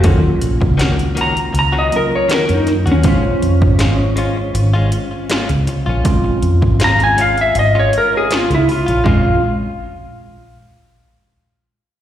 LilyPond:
<<
  \new Staff \with { instrumentName = "Electric slide guitar" } { \time 4/4 \key bes \minor \tempo 4 = 80 r4. bes''16 r16 bes''16 ees''16 bes'16 des''16 bes'16 ees'16 r16 des'16 | des'2. r4 | r4 bes''16 aes''16 f''16 e''16 ees''16 des''16 bes'16 aes'16 f'16 e'16 f'8 | f'8 r2. r8 | }
  \new Staff \with { instrumentName = "Clean electric guitar" } { \time 4/4 \key bes \minor <ees bes des' ges'>16 r8. <ees bes des' ges'>16 r16 <ees bes des' ges'>16 r8 <ees bes des' ges'>16 r8 <ees bes des' ges'>16 r8 <bes des' ges'>16 | <aes des' f'>16 r8. <aes des' f'>16 r16 <aes des' f'>16 r8 <aes des' f'>16 r8 <aes des' f'>16 r8 <des' f'>16 | r4 <aes des' f'>16 r16 <aes des' f'>16 r8 <aes des' f'>16 r8 <aes des' f'>16 r8 <des' f'>16 | <aes des' f'>8 r2. r8 | }
  \new Staff \with { instrumentName = "Tine electric piano" } { \time 4/4 \key bes \minor <ges bes des' f'>2~ <ges bes des' f'>8 <ges bes des' f'>4. | <aes des' f' c''>1 | <aes c' des' f'>1 | <aes c' des' f'>8 r2. r8 | }
  \new Staff \with { instrumentName = "Fingered electric bass" } { \clef bass \time 4/4 \key bes \minor ees,16 r16 bes,,16 des,4~ des,16 des,8 r8. ges,16 r16 ees,16 | bes,,16 r16 f,16 aes,,4~ aes,,16 aes,,8 r8. des,16 r16 bes,,16 | bes,,16 r16 f,16 aes,,4~ aes,,16 aes,,8 r8. des,16 r16 bes,,16 | bes,,8 r2. r8 | }
  \new DrumStaff \with { instrumentName = "Drums" } \drummode { \time 4/4 <hh bd>8 hh16 bd16 <hh sn>16 hh16 hh16 hh16 hh8 hh8 <hh sn>16 hh16 <hh sn>16 hh16 | <hh bd>8 hh16 bd16 <hh sn>8 hh8 hh8 hh8 <hh sn>16 hh16 hh8 | <hh bd>8 hh16 bd16 <hh sn>16 hh16 hh16 hh16 hh8 hh8 <hh sn>16 hh16 hho16 hh16 | <bd tomfh>4 r4 r4 r4 | }
>>